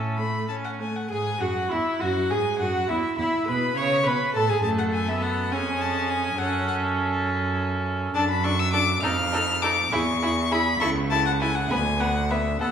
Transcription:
0.00 0.90 A2 soft
0.00 0.20 C#4 soft
0.00 0.18 A4 medium
0.17 0.49 A3 soft
0.17 0.48 B5 medium
0.48 0.81 C#4 soft
0.48 0.55 A5 medium
0.64 0.71 F#5 medium
0.80 1.10 A3 soft
0.80 0.98 G#5 medium
0.96 1.10 F#5 medium
1.10 1.42 G#2 medium
1.10 1.39 G#4 medium
1.10 1.42 G#4 medium
1.10 1.42 G#5 medium
1.40 1.71 F#2 medium
1.40 1.72 F#4 medium
1.40 1.73 F#4 medium
1.40 1.73 F#5 medium
1.70 1.79 E2 medium
1.70 1.99 E4 medium
1.70 2.02 E4 medium
1.70 2.03 E5 medium
2.00 2.32 F#2 medium
2.00 2.08 F#4 medium
2.00 2.32 F#4 medium
2.00 2.32 F#5 medium
2.30 2.61 G#2 medium
2.30 2.38 G#4 medium
2.30 2.61 G#4 medium
2.30 2.58 G#5 medium
2.59 2.89 F#2 medium
2.59 2.92 F#4 medium
2.59 2.89 F#4 medium
2.59 2.90 F#5 medium
2.88 2.97 E2 medium
2.88 3.18 E4 medium
2.88 3.17 E5 medium
3.18 3.26 E2 medium
3.18 3.47 E4 medium
3.18 3.50 E4 medium
3.18 3.46 E5 medium
3.47 3.76 B2 medium
3.47 3.77 B4 medium
3.47 3.79 B5 medium
3.76 4.05 C#3 medium
3.76 4.05 C#5 medium
3.76 4.09 C#5 medium
3.76 4.08 C#6 medium
4.06 4.14 B2 medium
4.06 4.35 B4 medium
4.06 4.38 B4 medium
4.06 4.34 B5 medium
4.34 4.50 A2 medium
4.34 4.49 A4 medium
4.34 4.50 A4 medium
4.34 4.51 A5 medium
4.49 4.63 G#2 medium
4.49 4.64 G#4 medium
4.49 4.56 G#4 medium
4.49 4.63 G#5 medium
4.63 5.53 F#2 medium
4.63 5.10 A3 medium
4.63 5.54 A4 medium
4.63 4.69 A5 medium
4.78 4.84 F#5 medium
4.93 5.10 G#5 medium
5.09 5.53 B3 medium
5.09 5.24 E5 medium
5.22 5.53 F#5 medium
5.51 6.38 F2 medium
5.51 6.38 C#4 medium
5.51 6.39 G#4 medium
5.51 5.82 G#5 medium
5.81 6.11 A5 medium
6.10 6.40 G#5 medium
6.38 8.11 F#2 medium
6.38 8.11 C#4 medium
6.38 8.12 A4 medium
6.38 6.67 F#5 medium
6.68 6.76 F#5 medium
8.15 8.93 F#2 medium
8.15 8.23 D4 medium
8.15 8.23 A4 medium
8.15 8.28 A5 medium
8.31 8.45 B5 medium
8.43 8.52 D4 medium
8.43 8.51 A4 medium
8.43 8.61 C#6 medium
8.59 8.73 E6 loud
8.73 8.81 D4 medium
8.73 8.81 A4 medium
8.73 9.02 D6 loud
9.02 9.82 F2 medium
9.02 9.10 D#4 medium
9.02 9.11 A4 medium
9.02 9.64 F6 loud
9.32 9.40 D#4 medium
9.32 9.41 A4 medium
9.62 9.71 D#4 medium
9.62 9.71 A4 medium
9.62 9.94 D6 medium
9.92 10.71 E2 medium
9.92 10.00 E4 medium
9.92 10.01 G#4 medium
9.92 10.53 C#6 medium
10.22 10.30 E4 medium
10.22 10.30 G#4 medium
10.51 10.60 E4 medium
10.51 10.59 G#4 medium
10.51 10.80 B5 loud
10.81 11.60 C#2 medium
10.81 10.89 E4 medium
10.81 10.89 A4 medium
10.81 10.89 C#6 medium
11.10 11.19 E4 medium
11.10 11.19 A4 medium
11.10 11.25 A5 medium
11.26 11.32 F#5 medium
11.41 11.49 E4 medium
11.41 11.49 A4 medium
11.41 11.57 G#5 medium
11.55 11.72 F#5 medium
11.71 12.51 D2 medium
11.71 11.79 B3 medium
11.71 11.79 B4 medium
11.71 12.01 G#5 medium
12.00 12.09 B3 medium
12.00 12.08 B4 medium
12.00 12.32 F#5 medium
12.30 12.39 B3 medium
12.30 12.38 B4 medium
12.30 12.61 E5 medium
12.60 12.71 D#2 medium
12.60 12.70 B3 medium
12.60 12.68 A4 medium
12.60 12.71 F#5 medium

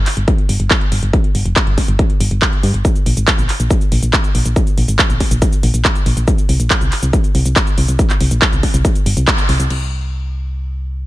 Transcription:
0.06 clap soft
0.06 open hi-hat loud
0.17 0.26 G1 medium
0.17 closed hi-hat medium
0.28 kick loud
0.28 closed hi-hat medium
0.38 closed hi-hat soft
0.49 0.58 G1 loud
0.49 open hi-hat loud
0.60 0.69 G1 medium
0.60 closed hi-hat soft
0.71 kick loud
0.71 clap loud
0.71 closed hi-hat soft
0.81 closed hi-hat soft
0.92 1.01 G1 medium
0.92 open hi-hat loud
1.03 1.12 G1 medium
1.03 closed hi-hat soft
1.13 kick loud
1.13 closed hi-hat soft
1.24 closed hi-hat soft
1.35 1.44 G1 medium
1.35 open hi-hat loud
1.46 1.55 F1 medium
1.46 closed hi-hat soft
1.56 kick loud
1.56 clap loud
1.56 closed hi-hat soft
1.67 1.76 G1 medium
1.67 closed hi-hat soft
1.78 kick medium
1.78 open hi-hat loud
1.88 1.97 G1 medium
1.88 closed hi-hat soft
1.99 kick loud
1.99 closed hi-hat soft
2.10 closed hi-hat soft
2.20 2.29 G1 loud
2.20 open hi-hat loud
2.31 2.40 G1 medium
2.31 closed hi-hat soft
2.42 kick loud
2.42 clap loud
2.42 closed hi-hat soft
2.53 closed hi-hat soft
2.63 2.72 G2 medium
2.63 open hi-hat loud
2.74 2.83 G1 medium
2.74 closed hi-hat soft
2.85 kick loud
2.85 closed hi-hat soft
2.85 shaker medium
2.96 closed hi-hat soft
2.96 shaker soft
3.06 3.15 A#1 medium
3.06 open hi-hat loud
3.17 3.26 G#1 medium
3.17 closed hi-hat soft
3.17 shaker medium
3.28 kick loud
3.28 clap loud
3.28 closed hi-hat medium
3.28 shaker medium
3.38 3.47 A#1 medium
3.38 closed hi-hat soft
3.38 shaker soft
3.49 clap soft
3.49 open hi-hat loud
3.60 3.69 A#1 medium
3.60 closed hi-hat soft
3.60 shaker medium
3.70 kick loud
3.70 closed hi-hat medium
3.70 shaker medium
3.81 closed hi-hat soft
3.81 shaker soft
3.92 4.01 A#1 loud
3.92 open hi-hat loud
4.03 4.12 A#1 medium
4.03 closed hi-hat soft
4.03 shaker medium
4.13 kick loud
4.13 clap loud
4.13 closed hi-hat soft
4.13 shaker medium
4.24 closed hi-hat soft
4.24 shaker soft
4.35 4.44 A#1 medium
4.35 open hi-hat loud
4.46 4.55 A#1 medium
4.46 closed hi-hat soft
4.46 shaker medium
4.56 kick loud
4.56 closed hi-hat medium
4.56 shaker medium
4.67 closed hi-hat soft
4.67 shaker soft
4.78 4.87 A#1 medium
4.78 open hi-hat loud
4.88 4.97 G#1 medium
4.88 closed hi-hat medium
4.88 shaker medium
4.99 kick loud
4.99 clap loud
4.99 closed hi-hat medium
4.99 shaker medium
5.10 5.19 A#1 medium
5.10 closed hi-hat soft
5.10 shaker soft
5.20 kick medium
5.20 open hi-hat loud
5.31 5.40 A#1 medium
5.31 closed hi-hat medium
5.31 shaker medium
5.42 kick loud
5.42 closed hi-hat medium
5.42 shaker medium
5.53 closed hi-hat soft
5.53 shaker soft
5.63 5.72 A#1 loud
5.63 open hi-hat loud
5.74 5.83 A#1 medium
5.74 closed hi-hat medium
5.74 shaker medium
5.85 kick loud
5.85 clap loud
5.85 closed hi-hat soft
5.85 shaker medium
5.95 closed hi-hat soft
5.95 shaker soft
6.06 6.15 A#1 loud
6.06 open hi-hat loud
6.17 6.26 A#1 medium
6.17 closed hi-hat medium
6.17 shaker medium
6.28 kick loud
6.28 closed hi-hat medium
6.28 shaker medium
6.38 closed hi-hat soft
6.38 shaker soft
6.49 6.58 C2 loud
6.49 open hi-hat loud
6.60 6.69 A#1 medium
6.60 closed hi-hat medium
6.60 shaker medium
6.70 kick loud
6.70 clap loud
6.70 closed hi-hat medium
6.70 shaker medium
6.81 6.90 C2 medium
6.81 closed hi-hat soft
6.81 shaker soft
6.92 clap soft
6.92 open hi-hat loud
7.03 7.12 C2 medium
7.03 closed hi-hat medium
7.03 shaker medium
7.13 kick loud
7.13 closed hi-hat medium
7.13 shaker medium
7.24 closed hi-hat soft
7.24 shaker soft
7.35 7.44 C2 loud
7.35 open hi-hat loud
7.45 7.55 C2 medium
7.45 closed hi-hat medium
7.45 shaker medium
7.56 kick loud
7.56 clap loud
7.56 closed hi-hat soft
7.56 shaker medium
7.67 closed hi-hat soft
7.67 shaker soft
7.78 7.87 C2 loud
7.78 open hi-hat loud
7.88 7.97 C2 medium
7.88 closed hi-hat medium
7.88 shaker medium
7.99 kick loud
7.99 closed hi-hat medium
7.99 shaker medium
8.10 clap soft
8.10 closed hi-hat soft
8.10 shaker soft
8.20 8.30 C2 medium
8.20 open hi-hat loud
8.31 8.40 A#1 medium
8.31 closed hi-hat medium
8.31 shaker medium
8.42 kick loud
8.42 clap loud
8.42 closed hi-hat medium
8.42 shaker medium
8.53 8.62 C2 medium
8.53 closed hi-hat soft
8.53 shaker soft
8.63 kick medium
8.63 open hi-hat loud
8.74 8.83 C2 medium
8.74 closed hi-hat medium
8.74 shaker medium
8.85 kick loud
8.85 closed hi-hat medium
8.85 shaker medium
8.95 closed hi-hat soft
8.95 shaker soft
9.06 9.15 G1 loud
9.06 open hi-hat loud
9.17 9.26 C2 medium
9.17 closed hi-hat medium
9.17 shaker medium
9.28 kick loud
9.28 clap loud
9.28 closed hi-hat medium
9.28 shaker soft
9.38 closed hi-hat soft
9.38 shaker soft
9.49 9.58 C2 loud
9.49 open hi-hat loud
9.60 9.69 C2 medium
9.60 closed hi-hat medium
9.60 shaker medium
9.70 11.06 C2 medium
9.70 crash medium

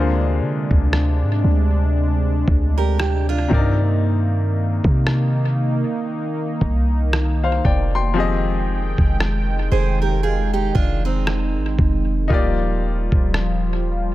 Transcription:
0.00 0.42 D2 loud
0.00 3.48 C3 medium
0.00 3.46 D3 medium
0.00 3.47 G#3 medium
0.00 3.47 A#3 medium
0.00 3.47 D4 medium
0.00 3.47 F4 medium
0.00 3.48 G#4 medium
0.00 3.49 C5 medium
0.00 0.17 F5 medium
0.41 0.69 D3 medium
0.71 1.24 D2 loud
0.71 kick medium
0.93 cross-stick loud
1.23 1.43 G#2 medium
1.44 2.44 D2 loud
2.48 3.47 D2 medium
2.48 kick medium
2.78 2.98 G4 medium
2.78 2.98 A#4 medium
2.99 3.28 G4 medium
2.99 cross-stick loud
3.29 3.79 D4 medium
3.29 3.78 F4 medium
3.48 4.80 G2 loud
3.48 7.59 C3 medium
3.48 8.12 D#3 medium
3.48 8.12 A#3 medium
3.48 7.60 C4 medium
3.48 3.59 D4 soft
3.48 8.12 D#4 medium
3.48 kick loud
3.53 7.62 A#4 medium
3.53 7.11 D5 medium
3.58 7.64 D#4 medium
4.84 5.84 C3 loud
4.84 kick medium
5.07 cross-stick loud
6.61 7.61 C2 loud
6.61 kick medium
7.13 cross-stick loud
7.44 7.64 C5 medium
7.44 7.64 F5 medium
7.65 8.94 F1 loud
7.65 7.94 D5 medium
7.65 7.93 G5 medium
7.65 kick medium
7.95 8.44 G5 medium
7.95 8.44 C6 medium
8.14 12.26 D#3 medium
8.14 12.25 F3 medium
8.14 12.26 G#3 medium
8.14 12.26 C4 medium
8.14 12.26 G4 medium
8.14 12.26 G5 medium
8.18 12.27 G#4 medium
8.18 12.28 D#5 medium
8.98 9.69 F1 loud
8.98 kick medium
9.20 cross-stick loud
9.71 10.71 F1 loud
9.71 10.00 G#4 medium
9.71 10.00 C5 medium
10.02 10.23 G4 medium
10.02 10.22 A#4 medium
10.23 10.52 F4 medium
10.23 10.52 G#4 medium
10.53 10.74 D#4 medium
10.53 10.74 G4 medium
10.75 11.58 F1 loud
10.75 11.04 D4 medium
10.75 11.03 F4 medium
10.75 kick medium
11.05 12.27 C4 medium
11.05 12.26 D#4 medium
11.27 cross-stick loud
11.57 11.78 G#1 medium
11.79 12.28 F1 loud
11.79 kick medium
12.28 13.09 D#1 loud
12.28 14.15 F3 medium
12.28 14.15 G3 medium
12.28 14.15 A#3 medium
12.28 14.15 D#4 medium
12.28 14.15 F4 medium
12.28 kick loud
12.32 14.15 G4 medium
12.32 14.15 D5 medium
13.12 14.15 D#1 loud
13.12 kick medium
13.34 cross-stick loud

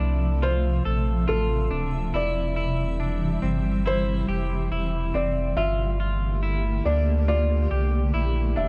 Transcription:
0.00 0.81 C2 medium
0.00 5.53 C3 medium
0.00 2.10 F3 medium
0.00 2.11 A3 medium
0.00 0.43 D4 medium
0.00 0.45 D5 medium
0.00 5.53 E5 medium
0.42 0.85 F4 medium
0.42 1.31 C5 medium
0.85 1.26 A#1 medium
0.85 1.27 A4 medium
1.28 1.69 A1 medium
1.28 1.71 F4 medium
1.28 2.17 A4 medium
1.71 2.12 D1 medium
1.71 2.14 D4 medium
2.13 3.38 E1 medium
2.13 5.54 E3 medium
2.13 5.54 G3 medium
2.13 2.55 E4 medium
2.13 3.39 D5 medium
2.56 3.00 E4 medium
3.00 3.42 D4 medium
3.42 4.24 G1 medium
3.42 3.85 C4 medium
3.86 4.28 E4 medium
3.86 4.68 C5 loud
4.28 4.69 F1 medium
4.28 4.71 G4 medium
4.71 5.12 E1 medium
4.71 5.14 E4 medium
5.14 5.55 F1 medium
5.14 5.57 C4 medium
5.14 5.59 D5 medium
5.56 6.81 G1 medium
5.56 8.69 D3 medium
5.56 8.69 A3 medium
5.56 8.69 A#3 medium
5.56 5.99 F4 medium
5.56 8.69 G4 medium
5.56 6.81 E5 medium
6.00 6.42 F4 medium
6.43 6.86 E4 medium
6.85 7.67 D2 medium
6.85 7.29 D4 medium
6.85 7.27 D5 medium
7.28 7.71 F4 medium
7.28 8.61 D5 medium
7.71 8.12 C2 medium
7.71 8.13 G4 medium
8.14 8.55 A#1 medium
8.14 8.57 E4 medium
8.56 8.69 E1 medium
8.56 8.69 D4 medium
8.56 8.69 E5 medium

